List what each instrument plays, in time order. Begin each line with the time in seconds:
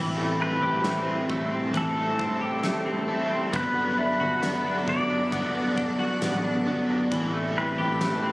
Already playing: picked electric bass A1, overdriven electric guitar A2 E3 G3 C4 E4, clean electric guitar E3, string machine C4 A4 E5 A5, celesta E5 G5
0.17 clean electric guitar A3
0.23 celesta B5
0.40 clean electric guitar C4, pedal steel guitar B4
0.62 picked electric bass A1, clean electric guitar G4
0.84 overdriven electric guitar E3 G3 C4, clean electric guitar A3, snare, ride, tambourine
0.88 overdriven electric guitar E4
1.07 clean electric guitar C4
1.29 picked electric bass A1, clean electric guitar A3, kick
1.51 clean electric guitar C4
1.73 picked electric bass A1, overdriven electric guitar A2 E3 G3 C4 E4, clean electric guitar E3, kick, ride
1.77 pedal steel guitar A4
1.96 clean electric guitar A3
2.19 clean electric guitar C4, kick
2.41 clean electric guitar G4
2.63 clean electric guitar A3, snare, ride, tambourine
2.86 clean electric guitar C4
3.08 clean electric guitar A3, overdriven electric guitar C4 E4
3.12 overdriven electric guitar G3
3.31 clean electric guitar C4
3.53 picked electric bass G1, overdriven electric guitar G2 D3 F#3 B3 D4, clean electric guitar B3, pedal steel guitar B4, string machine D5 F#5 B5, kick, ride
3.75 clean electric guitar B3
3.98 clean electric guitar D4, pedal steel guitar B4, celesta E5
4.20 picked electric bass G1, clean electric guitar F#4
4.42 overdriven electric guitar D3 F#3 B3, clean electric guitar B3, snare, ride, tambourine
4.46 overdriven electric guitar D4
4.64 clean electric guitar D4
4.87 picked electric bass G1, clean electric guitar B3, pedal steel guitar D5, kick
5.10 clean electric guitar D4
5.32 overdriven electric guitar G2 D3 F#3 B3 D4, clean electric guitar B3, kick, ride
5.54 clean electric guitar B3
5.77 clean electric guitar D4, celesta D5, kick
5.99 clean electric guitar F#4
6.22 picked electric bass A1, clean electric guitar B3, snare, ride, tambourine
6.44 clean electric guitar D4
6.66 picked electric bass G1, clean electric guitar B3, overdriven electric guitar B3 D4
6.70 overdriven electric guitar F#3
6.89 clean electric guitar D4
7.10 picked electric bass A1, overdriven electric guitar A2 E3 G3, clean electric guitar E3, string machine A4 E5 A5, kick, ride
7.15 overdriven electric guitar C4 E4
7.33 clean electric guitar A3
7.56 clean electric guitar C4, pedal steel guitar B4
7.78 picked electric bass A1, clean electric guitar G4
8.01 clean electric guitar A3, snare, ride, tambourine
8.23 clean electric guitar C4